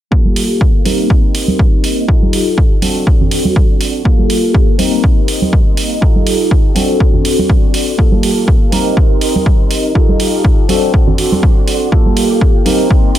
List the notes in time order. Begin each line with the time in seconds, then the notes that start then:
0.11 A#3 F4 G4 A4 F5 A5, kick
0.25 tambourine, high conga
0.36 open hi-hat
0.50 tambourine
0.61 kick
0.74 tambourine
0.85 C4 D#4 G4 A#4 D#5 C6, open hi-hat, high conga
0.99 tambourine
1.10 kick
1.24 tambourine
1.35 open hi-hat
1.48 tambourine, high conga
1.59 kick
1.74 tambourine
1.84 open hi-hat
1.97 tambourine
2.08 D#4 F4 G4 A4 F5 A5, kick, tambourine
2.22 tambourine, high conga
2.33 open hi-hat
2.58 kick
2.73 tambourine
2.82 C4 D4 F#4 A4 D5 C6, open hi-hat, high conga
2.95 tambourine
3.07 kick
3.21 tambourine, low conga
3.31 open hi-hat
3.45 tambourine, high conga
3.56 kick
3.81 open hi-hat
4.04 A#3 F4 G4 A4 F5 A5, kick
4.19 tambourine, high conga
4.30 open hi-hat
4.54 kick
4.78 C4 D#4 G4 A#4 D#5 C6, open hi-hat, high conga
4.93 tambourine
5.04 kick
5.28 open hi-hat
5.42 tambourine, high conga
5.53 kick
5.77 open hi-hat
5.91 tambourine
6.01 D#4 F4 G4 A4 F5 A5, kick
6.15 tambourine, high conga
6.27 open hi-hat
6.51 kick
6.65 tambourine
6.75 C4 D4 F#4 A4 D5 C6, open hi-hat, high conga
6.89 tambourine
7.00 kick
7.14 tambourine, low conga
7.25 open hi-hat
7.38 tambourine, high conga
7.50 kick
7.63 tambourine
7.74 open hi-hat
7.87 tambourine
7.98 A#3 F4 G4 A4 F5 A5, kick
8.12 tambourine, high conga
8.23 open hi-hat
8.48 kick
8.62 tambourine
8.71 C4 D#4 G4 A#4 D#5 C6, open hi-hat, high conga
8.87 tambourine
8.97 kick
9.11 tambourine
9.21 open hi-hat
9.36 tambourine, high conga
9.46 kick
9.71 open hi-hat
9.85 tambourine
9.95 D#4 F4 G4 A4 D#5 F5 A5, kick
10.09 tambourine, high conga
10.20 open hi-hat
10.45 kick
10.58 tambourine
10.68 C4 D4 F#4 A4 D5 C6, open hi-hat, high conga
10.94 kick
11.08 tambourine, low conga
11.18 open hi-hat
11.32 tambourine, high conga
11.43 kick
11.68 open hi-hat
11.81 tambourine
11.91 A#3 F4 G4 A4 F5 A5, kick
12.06 tambourine, high conga
12.17 open hi-hat
12.41 kick
12.55 tambourine
12.65 C4 D#4 G4 A#4 D#5 C6, open hi-hat, high conga
12.79 tambourine
12.91 kick
13.15 open hi-hat